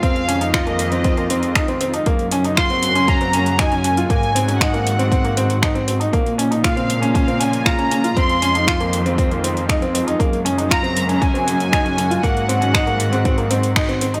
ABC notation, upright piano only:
X:1
M:4/4
L:1/16
Q:1/4=118
K:Gblyd
V:1 name="Upright piano"
C2 D E F B,2 C C B, C2 E C C E | B,2 D E F C2 D D C D2 E D D F | B,2 C D E B,2 C C B, C2 E C C E | B,2 D E F C2 D D C D2 F D D F |
C2 D E F B,2 C C B, C2 E C C E | B,2 D E F C2 D D C D2 E D D F | B,2 C D E B,2 C C B, C2 E C C E |]